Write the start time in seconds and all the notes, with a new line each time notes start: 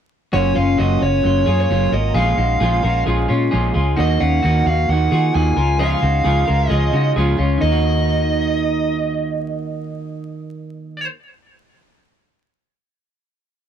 0.33 F#1 F#3 A#3 C#4 F4 F#4 C#5
0.54 F#1 A#3 C#4 F4 F5
0.78 F#1 F#3 A#3 C#4 F4 F#4 D#5
0.99 F#1 A#3 C#4 F4 C#5
1.23 F#1 F#3 A#3 C#4 F4
1.46 F#2 A#3 C#4 F4 G#4
1.60 C#5
1.70 F#1 F#3 A#3 C#4 F4
1.92 G#1 C#4 F4 F#4 A#4 D#5
1.96 A#3
2.14 A#1 A#2 F3 G#3 C#4 F4 G#4 F5
2.18 F4
2.37 A#1 G#3 C#4 D#4 F4 F#4
2.60 A#1 A#2 F3 G#3 C#4 F4 G#4
2.83 A#1 G#3 C#4 F4 F#4 A#4
3.05 A#1 F3 G#3 C#4 F4 G#4
3.28 A#2 G#3 C#4 F4
3.51 A#1 A#2 F3 G#3 C#4 F4 G#4
3.74 C#2 G#3 C#4 F4 G#4
3.96 D#2 D#3 A#3 D#4 F#4 D#5
4.20 D#2 A#3 C#4 D#4 F4 F#4 F#5
4.43 D#2 D#3 A#3 D#4 F#4
4.66 D#2 A#3 D#4 F#4 F5
4.89 D#2 D#3 A#3 D#4 F#5
4.94 F#4
5.11 D#3 A#3 D#4 F4 F#4 G#4
5.34 D#2 D#3 A#3 D#4 F#4 G#5
5.57 C#2 G#3 C#4 F4 A#4
5.79 C#3 F3 G#3 C#4 F4 G#4 F5
6.01 C#2 G#3 C#4 D#4 F4 F#4
6.24 C#2 C#3 F3 G#3 C#4 F4 G#4
6.45 C#2 G#3 C#4 F4 F#4 A#4
6.68 C#2 F3 G#3 C#4 F4 G#4 D#5
6.92 C#3 G#3 C#4 D#4 F4 F#4
7.16 C#2 C#3 F3 G#3 C#4 F4 G#4
7.38 C#2 G#3 C#4 F4
7.57 D#3 D#4
7.62 D#2 A#3 D#5
7.67 D#4
7.72 F#4